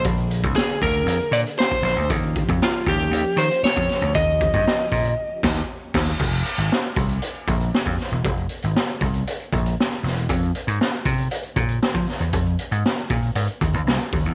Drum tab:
CC |----------------|----------------|----------x---x-|x---------------|
HH |xxxx-xoxxxxx-xxx|xxxx--oxx-xx--xx|x-xx--ox--------|-xxx--xxxxxx--ox|
SD |----o-------o-o-|----o-------o-o-|----o-----o---o-|----o-------o-o-|
BD |o--o--o------o--|o-oo--o------o--|o-oo--o---o---o-|o-----o---o--o--|

CC |----------------|----------------|----------------|
HH |xxxx-xxxxxxx-xox|xxxx-xxxxxxx-xox|xxxx-xxxxxxx-xox|
SD |----o-------o-o-|----o-------o-o-|----o-------o---|
BD |o-----o---o-----|o-----o---o--o--|o-----o---o---o-|